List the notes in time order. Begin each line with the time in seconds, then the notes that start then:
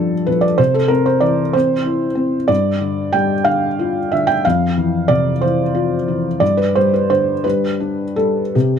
Already playing: G2 D3 F3 D4 G4 A4
0.26 F3 B4
0.41 D5
0.58 C3 C5
0.74 A4
0.88 C4 A#4
1.06 C5
1.20 E3 D5
1.53 C4 C5
1.86 E4
2.15 C4
2.48 G2 D5
2.81 D3
3.13 G3 G5
3.45 D3 F5
3.79 F4
4.12 D3 E5
4.27 G5
4.45 F2 F5
4.78 E3
5.08 C3 D5
5.41 E3 C5
5.75 F4
6.08 E3
6.40 G2 D5
6.57 B4
6.75 G3 C5
6.94 B4
7.10 D3 C5
7.44 G3 B4
7.80 D4
8.16 G3 A4
8.55 C3 G4